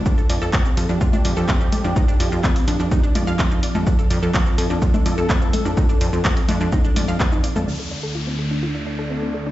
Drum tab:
CC |----------------|----------------|----------------|----------------|
HH |--o---o---o---o-|--o--oo---o---o-|--o---o---o---o-|--o--oo---o---o-|
SH |xxxxxxxxxxxxxxxx|xxxxxxxxxxxxxxxx|xxxxxxxxxxxxxxxx|xxxxxxxxxxxxxxxx|
CP |----x-------x---|----x-------x---|----x-------x---|----x-------x---|
CG |---------O----O-|----------O----O|---------O----O-|------O---O----O|
BD |o---o---o---o---|o---o---o---o---|o---o---o---o---|o---o---o---o---|

CC |x---------------|
HH |----------------|
SH |----------------|
CP |----------------|
CG |----------------|
BD |----------------|